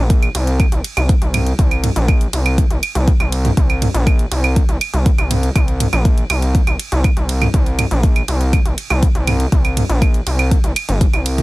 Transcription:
Already playing: analog synth bass A#1
0.10 kick, closed hi-hat
0.23 closed hi-hat, claves
0.35 analog synth bass C2, closed hi-hat, ride
0.47 closed hi-hat
0.60 kick, closed hi-hat, claves
0.72 analog synth bass C2, closed hi-hat
0.84 closed hi-hat, ride
0.97 analog synth bass C2, closed hi-hat, claves
1.09 kick, closed hi-hat
1.22 analog synth bass C2, closed hi-hat
1.34 closed hi-hat, mid tom, ride, claves
1.47 closed hi-hat
1.59 analog synth bass C2, kick, closed hi-hat
1.71 closed hi-hat, claves
1.84 closed hi-hat, mid tom, ride
1.96 analog synth bass A#1, closed hi-hat
2.08 kick, closed hi-hat, claves
2.21 closed hi-hat
2.33 analog synth bass C2, closed hi-hat, ride
2.46 closed hi-hat, claves
2.58 kick, closed hi-hat
2.71 analog synth bass C2, closed hi-hat
2.83 closed hi-hat, ride, claves
2.95 analog synth bass C2, closed hi-hat
3.08 kick, closed hi-hat
3.20 analog synth bass C2, closed hi-hat, claves
3.32 closed hi-hat, ride
3.45 closed hi-hat, mid tom
3.57 analog synth bass C2, kick, closed hi-hat
3.70 closed hi-hat, claves
3.82 closed hi-hat, mid tom, ride
3.94 analog synth bass A#1, closed hi-hat
4.07 kick, closed hi-hat, claves
4.19 closed hi-hat
4.31 analog synth bass C2, closed hi-hat, ride
4.44 closed hi-hat, claves
4.56 kick, closed hi-hat
4.69 analog synth bass C2, closed hi-hat
4.81 closed hi-hat, ride, claves
4.94 analog synth bass C2, closed hi-hat
5.06 kick, closed hi-hat
5.18 analog synth bass C2, closed hi-hat, claves
5.31 closed hi-hat, mid tom, ride
5.43 closed hi-hat
5.56 analog synth bass C2, kick, closed hi-hat, claves
5.68 closed hi-hat
5.80 closed hi-hat, mid tom, ride
5.93 analog synth bass A#1, closed hi-hat, claves
6.05 kick, closed hi-hat
6.18 closed hi-hat
6.30 analog synth bass C2, closed hi-hat, ride, claves
6.42 closed hi-hat
6.55 kick, closed hi-hat
6.67 analog synth bass C2, closed hi-hat, claves
6.79 closed hi-hat, ride
6.92 analog synth bass C2, closed hi-hat
7.04 kick, closed hi-hat, claves
7.17 analog synth bass C2, closed hi-hat
7.29 closed hi-hat, ride
7.42 closed hi-hat, mid tom, claves
7.54 analog synth bass C2, kick, closed hi-hat
7.66 closed hi-hat
7.79 closed hi-hat, mid tom, ride, claves
7.91 analog synth bass A#1, closed hi-hat
8.03 kick, closed hi-hat
8.16 closed hi-hat, claves
8.28 analog synth bass C2, closed hi-hat, ride
8.41 closed hi-hat
8.53 kick, closed hi-hat, claves
8.66 analog synth bass C2, closed hi-hat
8.78 closed hi-hat, ride
8.90 analog synth bass C2, closed hi-hat, claves
9.03 kick, closed hi-hat
9.15 analog synth bass C2, closed hi-hat
9.27 closed hi-hat, mid tom, ride, claves
9.40 closed hi-hat
9.52 analog synth bass C2, kick, closed hi-hat
9.65 closed hi-hat, claves
9.77 closed hi-hat, mid tom, ride
9.89 analog synth bass A#1, closed hi-hat
10.02 kick, closed hi-hat, claves
10.14 closed hi-hat
10.27 analog synth bass C2, closed hi-hat, ride
10.39 closed hi-hat, claves
10.51 kick, closed hi-hat
10.64 analog synth bass C2, closed hi-hat
10.76 closed hi-hat, ride, claves
10.89 analog synth bass G1, closed hi-hat
11.01 kick, closed hi-hat
11.13 analog synth bass C2, closed hi-hat, claves
11.26 closed hi-hat, ride
11.38 closed hi-hat, mid tom

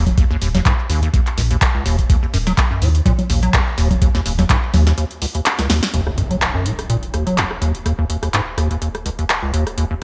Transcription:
Already playing: analog synth bass D#1
0.07 kick, closed hi-hat, low conga, cabasa
0.18 acid bass D#2, kick, closed hi-hat, cabasa
0.31 acid bass D#2, cabasa
0.42 analog synth bass D#1, acid bass D#2, open hi-hat, cabasa
0.55 acid bass D#2, snare, closed hi-hat, low conga, cabasa
0.66 acid bass G#2, kick, clap, closed hi-hat, cabasa
0.79 cabasa
0.90 acid bass D#2, analog synth bass D#2, open hi-hat, cabasa
1.03 acid bass D#2, closed hi-hat, cabasa
1.14 acid bass D#2, kick, closed hi-hat, cabasa
1.27 clap, closed hi-hat, cabasa
1.38 analog synth bass A#1, acid bass C#2, open hi-hat, cabasa
1.51 acid bass D#2, closed hi-hat, cabasa
1.62 kick, clap, closed hi-hat, cabasa
1.75 acid bass C#2, cabasa
1.86 analog synth bass D#1, acid bass D#2, open hi-hat, cabasa
1.99 kick, closed hi-hat, cabasa
2.10 acid bass D#2, kick, closed hi-hat, cabasa
2.23 acid bass D#2, cabasa
2.34 analog synth bass D#1, acid bass F#2, open hi-hat, cabasa
2.47 acid bass F#3, snare, closed hi-hat, cabasa
2.58 kick, clap, closed hi-hat, cabasa
2.71 acid bass F#2, cabasa
2.82 analog synth bass D#2, acid bass A#2, open hi-hat, cabasa
2.95 closed hi-hat, cabasa
3.06 acid bass A#2, kick, closed hi-hat, low conga, cabasa
3.19 closed hi-hat, low conga, cabasa
3.30 analog synth bass A#1, acid bass D#2, open hi-hat, cabasa
3.43 acid bass F#3, closed hi-hat, cabasa
3.54 acid bass C#2, kick, clap, closed hi-hat, cabasa
3.67 cabasa
3.78 analog synth bass D#1, acid bass D#2, open hi-hat, cabasa
3.91 kick, closed hi-hat, low conga, cabasa
4.02 acid bass D#2, kick, closed hi-hat, cabasa
4.15 acid bass D#2, snare, cabasa
4.26 analog synth bass D#1, acid bass D#2, open hi-hat, cabasa
4.39 acid bass D#2, snare, closed hi-hat, low conga, cabasa
4.50 acid bass G#2, kick, clap, closed hi-hat, cabasa
4.63 cabasa
4.74 analog synth bass D#2, acid bass D#2, open hi-hat, low conga, cabasa
4.87 acid bass D#2, snare, closed hi-hat, cabasa
4.98 acid bass D#2, closed hi-hat, cabasa
5.11 closed hi-hat, cabasa
5.22 acid bass C#2, open hi-hat, cabasa
5.35 acid bass D#2, closed hi-hat, cabasa
5.46 clap, closed hi-hat, cabasa
5.59 acid bass C#2, snare, closed hi-hat, cabasa
5.70 acid bass D#2, snare, open hi-hat, cabasa
5.83 snare, closed hi-hat, cabasa
5.94 analog synth bass D#1, acid bass D#2, closed hi-hat, impact
6.07 acid bass D#2, cross-stick
6.18 acid bass F#2, closed hi-hat
6.31 acid bass F#3, closed hi-hat
6.42 cross-stick, clap, closed hi-hat
6.55 acid bass F#2
6.66 acid bass A#2, closed hi-hat
6.79 cross-stick, closed hi-hat
6.90 acid bass A#2, closed hi-hat
7.03 closed hi-hat
7.14 acid bass D#2, cross-stick, closed hi-hat
7.27 acid bass F#3, closed hi-hat
7.38 acid bass C#2, clap, closed hi-hat
7.51 cross-stick
7.62 acid bass D#2, closed hi-hat
7.75 closed hi-hat
7.86 acid bass D#2, cross-stick, closed hi-hat
7.99 acid bass D#2
8.10 acid bass D#2, closed hi-hat
8.23 acid bass D#2, cross-stick, closed hi-hat
8.34 acid bass G#2, clap, closed hi-hat
8.57 acid bass D#2, cross-stick, closed hi-hat
8.71 closed hi-hat
8.82 acid bass D#2, closed hi-hat
8.95 cross-stick, closed hi-hat
9.06 acid bass C#2, closed hi-hat
9.19 acid bass D#2, closed hi-hat
9.30 cross-stick, clap, closed hi-hat
9.43 acid bass C#2
9.54 acid bass D#2, closed hi-hat
9.67 cross-stick, closed hi-hat
9.78 acid bass D#2, closed hi-hat
9.91 acid bass D#2

